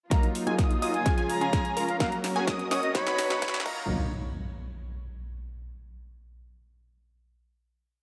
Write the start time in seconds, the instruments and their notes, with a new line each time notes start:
0.10 sub bass D#2, grand piano F#3 A#3 D#4 F4, string section F#3 D#4 F4, supersaw synth F#3 A#3 D#4 F4 A#4, digital synth lead A#5, kick, snare, closed hi-hat, riser
0.23 closed hi-hat
0.35 open hi-hat
0.47 sub bass D#2, supersaw synth F#3 A#3 D#4 F4 G#4, digital synth lead G#5, closed hi-hat
0.58 sub bass D#2, supersaw synth F#3 D#4 F4 D#5, digital synth lead D#6, kick, snare, closed hi-hat
0.71 closed hi-hat
0.82 sub bass D#2, supersaw synth F#3 A#3 D#4 F4 D#5, digital synth lead D#6, open hi-hat
0.94 flute G#5, closed hi-hat
1.05 sub bass C#2, string section C#3 G#3, grand piano F3 G#3 C#4 F4, supersaw synth C#4 F4 G#4, digital synth lead G#5, kick, snare, closed hi-hat
1.17 sub bass C#2, supersaw synth C#4 F4 G#4, digital synth lead G#5, closed hi-hat
1.29 flute A#5, open hi-hat
1.41 sub bass C#2, supersaw synth C#4 F4 G#4, digital synth lead G#5, closed hi-hat
1.53 sub bass C#2, supersaw synth C#4 F4 G#4, digital synth lead G#5, kick, snare, closed hi-hat
1.65 closed hi-hat
1.76 sub bass C#2, supersaw synth C#4 F4 A#4, digital synth lead A#5, open hi-hat
1.88 flute F5, closed hi-hat
1.99 sub bass F#1, grand piano F#3 A#3 C#4 F#4, string section F#3 C#4 A#4, supersaw synth C#4 F#4 A#4, flute F5, digital synth lead A#5, kick, snare, closed hi-hat
2.12 closed hi-hat
2.24 snare, open hi-hat
2.36 sub bass F#1, supersaw synth C#4 F#4 G#4, digital synth lead G#5, closed hi-hat
2.47 sub bass F#2, supersaw synth C#4 F#4 D#5, digital synth lead D#6, kick, snare, closed hi-hat
2.59 closed hi-hat
2.71 sub bass F#2, supersaw synth C#4 F#4 D#5, flute C#5, digital synth lead D#6, snare, open hi-hat
2.83 flute D#5, closed hi-hat
2.94 grand piano B2 F#3 B3 D#4 F#4, string section B3 D#4, supersaw synth D#4 F#4 B4, flute C#5, digital synth lead B5, kick, snare, closed hi-hat
3.07 sub bass B1, supersaw synth D#4 F#4 B4, digital synth lead B5, snare, closed hi-hat
3.18 snare, open hi-hat
3.30 supersaw synth D#4 F#4 B4, digital synth lead B5, snare, closed hi-hat
3.42 supersaw synth D#4 F#4 B4, digital synth lead B5, kick, snare, closed hi-hat
3.48 snare
3.54 snare, closed hi-hat
3.60 grand piano F#3, snare
3.65 sub bass D#2, string section F#3 D#4 F4, supersaw synth F#3 A#3 D#4 F4 A#4, grand piano A#3 D#4 F4, digital synth lead A#5, kick, crash, impact